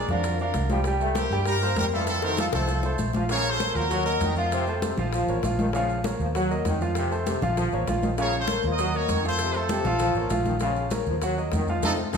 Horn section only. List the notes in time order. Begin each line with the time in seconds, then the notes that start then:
0.09 F#4 A#4
0.39 F#4 A#4
1.15 E4 G4
1.46 G4 A#4
1.78 G4 A#4
1.93 F4 A4
2.08 F4 A4
2.23 F#4 A#4
2.39 F4 A4
2.54 F4 A4
3.30 A#4 C#5
3.50 A4 C5
3.75 F#4 A#4
4.04 F#4 A#4
4.36 C4 F4
8.19 A#4 C#5
8.39 A4 C5
8.70 A#4 D#5
8.95 A#4 C#5
9.26 A4 C5
9.56 F4 A4
11.84 D#4 F4 A4
12.13 D#4 F4 A4